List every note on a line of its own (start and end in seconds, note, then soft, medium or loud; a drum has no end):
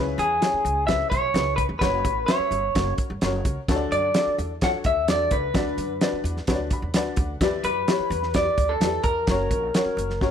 0.00 0.14 C#2 medium
0.00 0.61 C#3 medium
0.00 0.30 C#4 loud
0.00 0.30 E4 loud
0.00 0.31 G#4 loud
0.00 0.31 B4 loud
0.18 0.37 E2 loud
0.18 0.86 G#4 medium
0.18 closed hi-hat medium
0.41 0.77 C#4 medium
0.41 0.77 E4 medium
0.41 0.77 G#4 medium
0.41 0.77 C#5 medium
0.41 snare loud
0.41 closed hi-hat medium
0.53 muted upright bass stroke soft
0.65 1.02 C#2 medium
0.65 closed hi-hat medium
0.87 1.23 C#4 medium
0.87 1.23 E4 medium
0.87 1.24 G#4 medium
0.87 1.24 B4 medium
0.87 1.09 E5 medium
0.87 kick medium
0.87 snare loud
0.87 closed hi-hat medium
1.10 1.30 B1 medium
1.10 1.54 C#5 loud
1.10 kick medium
1.10 closed hi-hat medium
1.34 1.62 C#2 loud
1.34 1.70 C#4 medium
1.34 1.70 E4 medium
1.34 1.71 G#4 medium
1.34 1.71 B4 medium
1.34 snare loud
1.34 closed hi-hat medium
1.56 1.63 B4 medium
1.56 kick medium
1.56 closed hi-hat medium
1.69 1.79 E2 medium
1.79 2.00 F#1 loud
1.79 2.16 C#4 medium
1.79 2.17 F#4 medium
1.79 2.24 B4 medium
1.79 2.17 B4 medium
1.79 2.17 C#5 loud
1.79 kick medium
1.79 snare loud
1.79 closed hi-hat medium
2.04 2.23 A1 medium
2.04 kick medium
2.04 closed hi-hat medium
2.26 2.64 C#4 medium
2.26 2.64 F#4 medium
2.26 2.64 B4 medium
2.26 2.94 C#5 medium
2.26 2.64 E5 medium
2.26 snare loud
2.26 closed hi-hat medium
2.39 muted upright bass stroke soft
2.51 2.70 G1 medium
2.51 closed hi-hat medium
2.75 2.94 F#1 loud
2.75 3.11 C#4 medium
2.75 3.11 F#4 medium
2.75 3.11 A#4 medium
2.75 3.11 C#5 medium
2.75 kick medium
2.75 snare loud
2.75 closed hi-hat medium
2.98 muted upright bass stroke soft
2.98 kick medium
2.98 closed hi-hat medium
3.10 3.19 G1 medium
3.21 3.40 F#1 medium
3.21 3.58 C#4 medium
3.21 3.58 F#4 medium
3.21 3.58 A#4 medium
3.21 3.58 C#5 medium
3.21 snare loud
3.21 closed hi-hat medium
3.45 3.54 C#2 medium
3.45 kick medium
3.45 closed hi-hat medium
3.68 3.87 D2 loud
3.68 4.35 D3 medium
3.68 4.04 D4 loud
3.68 4.04 F#4 loud
3.68 4.05 A4 loud
3.68 3.75 C#5 medium
3.68 kick medium
3.68 snare loud
3.68 closed hi-hat medium
3.76 4.07 D5 loud
3.92 4.10 F#2 medium
3.92 4.35 D5 loud
3.92 closed hi-hat medium
4.14 4.50 D4 medium
4.14 4.50 F#4 medium
4.14 4.51 A4 medium
4.14 4.51 D5 medium
4.14 snare loud
4.14 closed hi-hat medium
4.27 muted upright bass stroke soft
4.38 4.75 E2 medium
4.38 closed hi-hat medium
4.61 4.97 D4 medium
4.61 4.67 F4 medium
4.61 4.97 A4 medium
4.61 4.97 C#5 medium
4.61 4.70 F#5 loud
4.61 kick medium
4.61 snare loud
4.61 closed hi-hat medium
4.68 5.00 F#4 medium
4.84 5.08 D2 medium
4.84 5.07 E5 loud
4.84 kick medium
4.84 closed hi-hat medium
5.08 5.26 E2 medium
5.08 5.43 D4 medium
5.08 5.43 F#4 medium
5.08 5.44 A4 medium
5.08 5.44 D5 medium
5.08 5.33 D5 medium
5.08 snare loud
5.08 closed hi-hat medium
5.31 5.50 C#2 medium
5.31 6.21 B4 medium
5.31 kick medium
5.31 closed hi-hat medium
5.54 5.73 D2 loud
5.54 6.21 D3 medium
5.54 5.90 D4 medium
5.54 5.90 F#4 medium
5.54 5.90 B4 medium
5.54 5.90 D5 loud
5.54 kick loud
5.54 snare loud
5.54 closed hi-hat medium
5.78 5.96 F#2 medium
5.78 closed hi-hat medium
6.01 6.37 D4 medium
6.01 6.37 F#4 medium
6.01 6.37 B4 medium
6.01 6.37 D5 medium
6.01 snare loud
6.01 closed hi-hat medium
6.13 muted upright bass stroke soft
6.24 6.43 E2 medium
6.24 closed hi-hat medium
6.37 snare soft
6.47 6.75 D2 medium
6.47 6.83 D4 medium
6.47 6.83 F#4 medium
6.47 6.83 B4 medium
6.47 6.54 C#5 medium
6.47 kick medium
6.47 snare loud
6.47 closed hi-hat medium
6.55 6.86 D5 medium
6.71 6.94 B5 medium
6.71 kick medium
6.71 closed hi-hat medium
6.82 6.94 E2 medium
6.94 7.13 D2 medium
6.94 7.30 D4 medium
6.94 7.30 F#4 medium
6.94 7.31 B4 medium
6.94 7.31 D5 loud
6.94 7.39 F#5 medium
6.94 snare loud
6.94 closed hi-hat medium
7.16 7.36 D2 medium
7.16 kick medium
7.16 closed hi-hat medium
7.41 7.59 E2 loud
7.41 8.08 E3 medium
7.41 7.77 E4 loud
7.41 7.77 G4 loud
7.41 7.77 B4 loud
7.41 7.77 D5 loud
7.41 kick medium
7.41 snare loud
7.41 closed hi-hat medium
7.64 7.82 F#2 medium
7.64 8.35 B4 loud
7.64 closed hi-hat medium
7.88 8.24 E4 medium
7.88 8.24 G4 medium
7.88 8.24 B4 medium
7.88 8.24 C#5 medium
7.88 snare loud
7.88 closed hi-hat medium
7.99 muted upright bass stroke soft
8.10 8.47 E2 medium
8.10 closed hi-hat medium
8.23 snare soft
8.34 8.70 E4 medium
8.34 8.41 F#4 medium
8.34 8.70 B4 medium
8.34 8.71 D5 loud
8.34 8.71 D5 medium
8.34 kick medium
8.34 snare loud
8.34 closed hi-hat medium
8.41 8.73 G4 medium
8.58 8.76 D2 medium
8.58 kick medium
8.58 closed hi-hat medium
8.69 9.05 A4 medium
8.81 8.99 E2 medium
8.81 9.17 E4 medium
8.81 9.17 G4 medium
8.81 9.17 B4 medium
8.81 9.17 D5 medium
8.81 snare loud
8.81 closed hi-hat medium
9.04 9.23 E2 medium
9.04 10.31 A#4 medium
9.04 kick medium
9.04 closed hi-hat medium
9.27 9.46 F#1 loud
9.27 9.63 C#4 loud
9.27 9.64 F#4 medium
9.27 9.64 A#4 medium
9.27 9.64 C#5 loud
9.27 kick loud
9.27 snare loud
9.27 closed hi-hat medium
9.51 9.69 A#1 medium
9.51 kick medium
9.51 closed hi-hat medium
9.74 10.10 C#4 medium
9.74 10.10 F#4 medium
9.74 10.10 A#4 medium
9.74 10.10 C#5 medium
9.74 snare loud
9.74 closed hi-hat medium
9.85 muted upright bass stroke soft
9.97 10.31 F#1 medium
9.97 closed hi-hat medium
10.10 snare soft
10.21 10.31 C#4 medium
10.21 10.31 F#4 medium
10.21 10.31 A#4 medium
10.21 10.31 C#5 loud
10.21 kick medium
10.21 snare medium